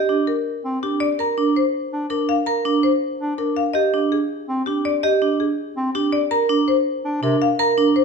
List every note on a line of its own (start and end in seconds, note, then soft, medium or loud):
0.00 0.15 G4 medium
0.00 0.15 D#5 medium
0.09 0.33 D4 medium
0.27 0.52 A#4 medium
0.64 0.78 C4 medium
0.83 1.07 D4 medium
0.83 1.07 G4 medium
1.00 1.25 D5 medium
1.19 1.43 A#4 medium
1.19 1.43 A#5 medium
1.37 1.61 D4 medium
1.56 1.80 C5 medium
1.93 2.07 D4 medium
2.10 2.34 D4 medium
2.10 2.34 A#4 medium
2.29 2.53 F5 medium
2.46 2.71 A#4 medium
2.46 2.71 A#5 medium
2.65 2.89 D4 medium
2.83 3.08 C5 medium
3.20 3.34 D4 medium
3.38 3.62 D4 medium
3.38 3.62 A#4 medium
3.56 3.81 F5 medium
3.73 3.99 G4 medium
3.73 3.99 D#5 medium
3.94 4.18 D4 medium
4.12 4.36 G#4 medium
4.48 4.62 C4 medium
4.66 4.91 D4 medium
4.66 4.90 G4 medium
4.85 5.09 D5 medium
5.03 5.27 G4 medium
5.03 5.27 D#5 medium
5.22 5.46 D4 medium
5.40 5.64 G#4 medium
5.76 5.90 C4 medium
5.95 6.19 D4 medium
5.95 6.19 G4 medium
6.13 6.37 D5 medium
6.31 6.55 A#4 medium
6.31 6.55 A#5 medium
6.49 6.73 D4 medium
6.68 6.92 C5 medium
7.05 7.18 D4 medium
7.23 7.37 C3 medium
7.23 7.47 D4 medium
7.23 7.47 A#4 medium
7.42 7.65 F5 medium
7.59 7.83 A#4 medium
7.59 7.83 A#5 medium
7.78 8.02 D4 medium
7.96 8.04 C5 medium